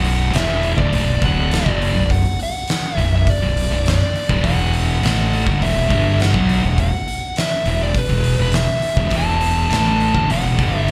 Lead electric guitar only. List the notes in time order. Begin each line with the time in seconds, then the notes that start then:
Already playing: F#5
0.35 E5
0.78 D5
1.24 F#5
1.54 D5
2.11 F#5
2.43 F#5
2.97 E5
3.16 E5
3.30 D5
3.89 D5
4.44 F#5
5.04 F#5
5.63 E5
6.21 F#5
6.80 F#5
7.38 E5
7.83 D5
7.98 B4
8.42 B4
8.55 E5
9.16 A5
9.74 A5
10.32 F#5
10.78 E5